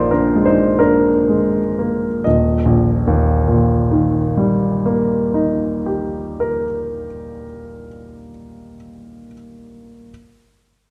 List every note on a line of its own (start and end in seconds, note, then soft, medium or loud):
0.00 2.21 A#1 soft
0.00 0.60 A#3 soft
0.00 0.47 D#4 soft
0.00 0.10 F4 soft
0.00 0.45 C5 medium
0.00 0.12 D5 medium
0.11 0.43 D4 soft
0.11 0.44 A#4 soft
0.35 1.07 G#3 soft
0.45 0.77 D#4 soft
0.45 0.79 C5 soft
0.79 1.57 A#3 soft
0.79 2.21 D4 soft
0.79 2.24 A#4 medium
1.29 2.07 G#3 soft
1.79 2.25 A#3 soft
2.24 6.66 D#1 soft
2.24 6.64 D#5 soft
2.65 7.05 A#1 soft
3.07 7.46 D#2 soft
3.48 7.87 A#2 soft
3.91 8.31 D#3 soft
4.37 8.77 G3 soft
4.86 9.25 A#3 soft
5.34 9.34 D#4 soft
5.86 9.34 G4 soft
6.40 9.33 A#4 soft